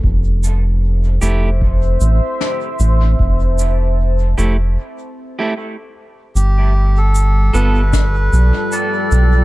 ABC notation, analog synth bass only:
X:1
M:4/4
L:1/8
Q:"Swing 16ths" 1/4=76
K:Gmix
V:1 name="Analog synth bass" clef=bass
F,,,3 F,,,2 A,,, z A,,, | F,,,3 F,,, z4 | G,,,3 G,,,2 B,,, z B,,, |]